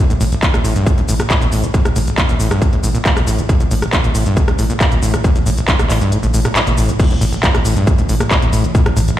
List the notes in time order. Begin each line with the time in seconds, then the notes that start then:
0.10 A1 A2, closed hi-hat, shaker
0.21 A1 A2, open hi-hat, shaker
0.32 A1, closed hi-hat, shaker
0.43 A1, kick, clap, closed hi-hat, shaker
0.54 A1 A#2, cross-stick, closed hi-hat, shaker
0.64 A1 A2, open hi-hat, shaker
0.76 G2, closed hi-hat, shaker
0.86 A2, kick, closed hi-hat, shaker
0.98 A1 A2, closed hi-hat
1.08 A1 A2, open hi-hat, shaker
1.20 A#2, cross-stick, closed hi-hat, shaker
1.30 A2, kick, clap, closed hi-hat, shaker
1.41 A1 A#2, closed hi-hat, shaker
1.52 A1 A2, open hi-hat, shaker
1.63 A1, closed hi-hat, shaker
1.74 A2, kick, closed hi-hat, shaker
1.85 A1 A2, cross-stick, closed hi-hat, shaker
1.96 A1 A2, open hi-hat, shaker
2.07 A1, closed hi-hat, shaker
2.18 A1, kick, clap, closed hi-hat, shaker
2.29 A1 A#2, closed hi-hat, shaker
2.40 A1 A2, open hi-hat, shaker
2.51 G2, cross-stick, closed hi-hat, shaker
2.61 A2, kick, closed hi-hat, shaker
2.73 A1 A2, closed hi-hat
2.83 A1 A2, open hi-hat, shaker
2.95 A#2, closed hi-hat, shaker
3.05 A2, kick, clap, closed hi-hat, shaker
3.17 A1 A#2, cross-stick, closed hi-hat, shaker
3.27 A1 A2, open hi-hat, shaker
3.38 A1, closed hi-hat, shaker
3.49 A2, kick, closed hi-hat, shaker
3.60 A1 A2, closed hi-hat, shaker
3.71 A1 A2, open hi-hat, shaker
3.82 A1, cross-stick, closed hi-hat, shaker
3.93 A1, kick, clap, closed hi-hat, shaker
4.04 A1 A#2, closed hi-hat, shaker
4.15 A1 A2, open hi-hat, shaker
4.26 G2, closed hi-hat, shaker
4.37 A2, kick, closed hi-hat, shaker
4.48 A1 A2, cross-stick, closed hi-hat
4.59 A1 A2, open hi-hat, shaker
4.70 A#2, closed hi-hat, shaker
4.80 A2, kick, clap, closed hi-hat, shaker
4.92 A1 A#2, closed hi-hat, shaker
5.02 A1 A2, open hi-hat, shaker
5.14 A1, cross-stick, closed hi-hat, shaker
5.24 A2, kick, closed hi-hat, shaker
5.36 A1 A2, closed hi-hat, shaker
5.46 A1 A2, open hi-hat, shaker
5.57 A1, closed hi-hat, shaker
5.68 A1, kick, clap, closed hi-hat, shaker
5.79 A1 A#2, cross-stick, closed hi-hat, shaker
5.90 A1 A2, clap, open hi-hat, shaker
6.01 G2, closed hi-hat, shaker
6.12 A2, closed hi-hat, shaker
6.23 A1 A2, closed hi-hat, shaker
6.34 A1 A2, open hi-hat, shaker
6.45 A#2, cross-stick, closed hi-hat, shaker
6.56 A2, clap, closed hi-hat, shaker
6.67 A1 A#2, closed hi-hat, shaker
6.78 A1 A2, open hi-hat, shaker
6.89 A1, closed hi-hat, shaker
6.99 A2 E3, kick, closed hi-hat, crash, shaker
7.11 A1 A2, closed hi-hat
7.21 A1 A2, open hi-hat, shaker
7.33 A1, closed hi-hat, shaker
7.43 A1, kick, clap, closed hi-hat, shaker
7.55 A1 A#2, cross-stick, closed hi-hat
7.65 A1 A2, open hi-hat, shaker
7.76 G2, closed hi-hat, shaker
7.87 A2, kick, closed hi-hat, shaker
7.98 A1 A2, closed hi-hat, shaker
8.09 A1 A2, open hi-hat, shaker
8.20 A#2, cross-stick, closed hi-hat, shaker
8.31 A2, kick, clap, closed hi-hat, shaker
8.42 A1 A#2, closed hi-hat
8.53 A1 A2, open hi-hat, shaker
8.64 A1, closed hi-hat, shaker
8.75 A2, kick, closed hi-hat, shaker
8.86 A1 A2, cross-stick, closed hi-hat
8.97 A1 A2, open hi-hat, shaker
9.08 A1, closed hi-hat, shaker